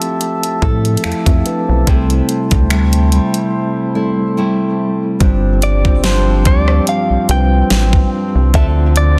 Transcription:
Already playing: F3 A3 C4 E4 G4 A4 E5 F5 A5
0.02 closed hi-hat
0.21 closed hi-hat
0.43 closed hi-hat
0.62 A2 F3 A3 C4 E4 A4, kick
0.85 closed hi-hat
0.97 closed hi-hat
1.04 F2 C4 E4 A4 F5, finger snap
1.12 closed hi-hat
1.26 F2 G4 E5, kick, closed hi-hat
1.46 D4 B4, closed hi-hat
1.68 B1 E4 C5
1.87 C2 C3 G3 A3 C4 E4 G#4 C5, kick, closed hi-hat
1.95 A4
2.10 closed hi-hat
2.29 closed hi-hat
2.51 D2, kick, closed hi-hat
2.70 G3 A3 E4, finger snap, closed hi-hat
2.93 closed hi-hat
3.12 G3, closed hi-hat
3.34 closed hi-hat
3.95 G3 A3 C4 E4 A4
4.37 G3 A3 E4
5.20 G1 G2 F3 G3 C4 D4 F4 G4 C5, kick, closed hi-hat
5.62 D5, closed hi-hat
5.84 G3 C4 D4 F4 C5, kick
6.04 F3 C4 D4 C5, snare, closed hi-hat
6.45 D2 D5, kick, closed hi-hat
6.68 cross-stick
6.87 F5, closed hi-hat
7.10 C2
7.28 C2 G3 C4 D4 F4 B4 G5, closed hi-hat
7.37 C5
7.70 A1, snare, closed hi-hat
7.93 kick
8.35 C2
8.53 D2 D3 F3 A3 C4 D4 F4 A4 C5 E5, kick, closed hi-hat
8.96 D5, closed hi-hat

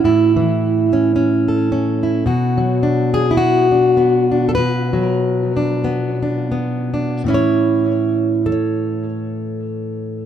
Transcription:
Already playing: E3
0.04 A2 E4
0.36 E3
0.93 C#4
1.16 C#4
1.48 A4
1.72 C#4
2.03 E4
2.26 B2 F#4
2.58 F#3
2.83 D4
3.14 G#4
3.31 E4
3.37 F#4
3.71 D4
3.97 B3
4.32 D4
4.49 A4
4.55 B2 B4
4.93 F#3
5.57 D4
5.84 B3
6.22 D4
6.52 B3
6.94 D4
7.24 A2 E3
7.28 C#4 E4
7.34 C#5
8.46 A4
8.52 C#5

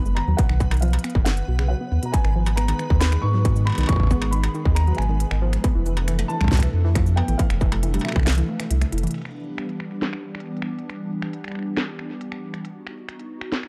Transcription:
Already playing: F#1 B3 B4 B5
0.06 G#3, cabasa
0.15 D#3 A#5, finger snap, struck metal
0.28 D#2 F#3
0.37 B2 F#5, kick, closed hi-hat
0.49 B1 D#3, finger snap
0.60 kick, cabasa
0.71 D#3, finger snap, closed hi-hat, struck metal
0.74 closed hi-hat
0.77 closed hi-hat
0.80 F5, closed hi-hat
0.82 F3, closed hi-hat
0.85 closed hi-hat
0.88 closed hi-hat
0.90 closed hi-hat
0.93 closed hi-hat, struck metal
0.99 closed hi-hat
1.04 B3, finger snap, closed hi-hat, cabasa
1.10 closed hi-hat
1.15 F#1 D#3, kick
1.24 D#3 F#5, finger snap, snare, closed hi-hat
1.37 closed hi-hat
1.48 B1 B2
1.59 C#3, finger snap
1.68 F#3 F#5
1.81 B3
1.92 D#2 B3
2.03 B2 A#5, closed hi-hat
2.12 D#3 G#3 B3 G#4 G#5, kick, closed hi-hat
2.25 G#1 D#3, finger snap
2.36 F3
2.46 closed hi-hat, struck metal, cabasa
2.56 B3 A#5, finger snap, closed hi-hat
2.68 D#3, closed hi-hat, struck metal
2.79 D#3, finger snap, cabasa
2.90 D#2, kick
3.00 D#3 B5, snare, closed hi-hat
3.12 G#3, finger snap, closed hi-hat
3.22 G#2 D#3 C#6
3.34 F#3
3.45 B2, kick, closed hi-hat
3.56 D#3, cabasa
3.65 B5, finger snap, struck metal
3.70 struck metal
3.72 struck metal
3.75 closed hi-hat, struck metal
3.78 B1 D#3, struck metal
3.81 struck metal
3.83 struck metal
3.86 F3 C#6, finger snap, kick, closed hi-hat, struck metal
3.92 kick
3.96 G#1, kick
4.00 kick
4.03 kick
4.07 kick, cabasa
4.11 B3, kick
4.22 D#3, finger snap, closed hi-hat, struck metal
4.31 D#3 B5, closed hi-hat
4.44 finger snap, closed hi-hat, struck metal
4.54 D#3, cabasa
4.65 D#2 G#3, kick
4.75 D#3 A#5, finger snap, closed hi-hat
4.87 F#3, closed hi-hat
4.95 G#1 B2 G#5, finger snap, closed hi-hat
5.02 closed hi-hat
5.09 D#3
5.20 closed hi-hat
5.31 G#1 D#3, finger snap
5.42 F3
5.53 finger snap, closed hi-hat
5.64 C3 F3 A3 B3 D4 A4, kick, closed hi-hat
5.75 F1 E3
5.86 E3, cabasa
5.97 closed hi-hat, struck metal
6.08 E3, finger snap, closed hi-hat
6.19 A3, closed hi-hat, struck metal
6.28 E3 A5, cabasa
6.41 C2 G3, finger snap, kick
6.44 finger snap, kick
6.48 kick, snare, closed hi-hat
6.52 B2, finger snap, kick, closed hi-hat
6.55 kick, closed hi-hat
6.59 E3, finger snap, kick, closed hi-hat
6.74 F2
6.84 E3
6.95 F3, finger snap, kick, closed hi-hat
7.06 cabasa
7.16 B3 G5, struck metal
7.28 A1 E3, closed hi-hat
7.38 E3 F5, kick, closed hi-hat
7.50 F1, finger snap, closed hi-hat
7.61 E3, kick, cabasa
7.72 A3, finger snap, closed hi-hat, struck metal
7.83 E3, closed hi-hat
7.94 G3, closed hi-hat, struck metal
7.99 struck metal, cabasa
8.03 B2 E5, finger snap
8.09 finger snap, struck metal
8.12 finger snap
8.16 C2 E3, finger snap, kick
8.19 finger snap
8.23 F5, finger snap
8.27 finger snap, snare, closed hi-hat
8.30 closed hi-hat
8.32 closed hi-hat
8.35 closed hi-hat
8.38 E3, closed hi-hat
8.49 A3
8.60 E3, finger snap, closed hi-hat
8.71 C2 E4, closed hi-hat
8.81 A3, finger snap, closed hi-hat
8.92 F1 E4, closed hi-hat
8.98 closed hi-hat
9.03 E3, closed hi-hat
9.07 closed hi-hat
9.11 B3, closed hi-hat
9.14 E3 G3 D4 G4, closed hi-hat, crash
9.18 closed hi-hat
9.22 finger snap, closed hi-hat
9.58 finger snap, closed hi-hat
9.69 closed hi-hat
9.80 finger snap
10.02 snare, closed hi-hat
10.13 finger snap
10.35 finger snap
10.40 closed hi-hat
10.57 closed hi-hat
10.62 finger snap
10.79 closed hi-hat
10.90 finger snap, closed hi-hat
11.22 finger snap
11.33 closed hi-hat
11.44 finger snap, closed hi-hat
11.48 finger snap, closed hi-hat
11.52 finger snap, closed hi-hat
11.55 finger snap
11.59 finger snap
11.63 finger snap
11.77 finger snap, snare, closed hi-hat
11.99 finger snap
12.21 closed hi-hat
12.32 finger snap, closed hi-hat
12.54 finger snap, closed hi-hat
12.65 D#4 F#4, closed hi-hat
12.87 finger snap
13.09 finger snap, closed hi-hat
13.19 closed hi-hat
13.41 finger snap
13.52 snare, closed hi-hat
13.63 finger snap

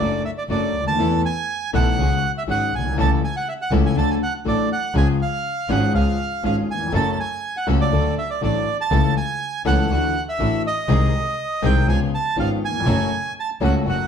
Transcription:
Already playing: D5
0.00 F#1 F#2 F#3 A3 D4 F#4 A4
0.25 E5
0.38 D5
0.49 F#1 F#2 F#3 A3 D4 F#4 A4 D5
0.74 D2
0.80 C#2
0.86 D2 A5
0.92 D#2
0.98 E2 E3 A3 B3 E4 A4
1.25 G#5
1.73 B1 B2 E3 A3 B3 E4 A4 F#5
1.98 C#2 C#3 F#3 G#3 C#4 F#4 G#4
2.38 E5
2.47 G#1 G#2 F#3 G#3 C#4 F#4 G#4 F#5
2.72 B1 G#5
2.78 A#1
2.85 B1
2.91 C2
2.97 C#2 C#3 E3 A3 C#4 E4 A4 A5
3.24 G#5
3.36 F#5
3.49 E5
3.62 F#5
3.71 C#2 C#3 E3 A3 C#4 E4 A4
3.86 G#5
3.95 D2 D3 F#3 A3 D4 F#4 A4 A5
4.10 G#5
4.23 F#5
4.45 A1 A2 F#3 A3 D4 F#4 A4 D5
4.72 F#5
4.94 C#2 C#3 F3 G#3 C#4 F4 G#4 G#5
5.22 F5
5.68 G#1 G#2 F3 G#3 C#4 F4 G#4 F#5
5.93 C#2 C#3 F3 G#3 C#4 F4 G#4 F5
6.43 G#1 G#2 F3 G#3 C#4 F4 G#4 F5
6.71 D#2 G#5
6.80 E2
6.86 F2
6.92 F#1 F#2 F#3 A3 C#4 F#4 A4 A5
7.12 A5
7.20 G#5
7.57 F#5
7.67 C#2 C#3 F#3 A3 C#4 F#4 A4
7.81 D5
7.92 D2 D3 F#3 A3 D4 F#4 A4
8.18 E5
8.30 D5
8.41 A1 A2 F#3 A3 D4 F#4 A4 D5
8.81 A5
8.91 C#2 C#3 E3 A3 C#4 E4 A4
9.17 G#5
9.65 C#2 C#3 E3 A3 C#4 E4 A4 F#5
9.90 D2 D3 E3 A3 D4 E4 F#4
10.29 E5
10.39 A1 A2 E3 A3 D4 E4 F#4
10.67 D#5
10.88 C2 C3 D#3 G#3 C4 D#4 G#4
11.62 C2 C3 D#3 G#3 C4 D#4 G#4 G5
11.87 C#2 C#3 F3 B3 C#4 F4 G#4 G#5
12.15 A5
12.37 G#1 G#2 F3 B3 C#4 F4 G#4 F5
12.65 D#2 G#5
12.74 E2
12.80 F2
12.86 F#1 F#2 F#3 A3 C#4 F#4 A4
13.40 A5
13.61 C#2 C#3 F#3 A3 C#4 F#4 A4 F#5
13.85 F#1 F#2 F#3 A3 C#4 F#4 A4
13.89 F#5

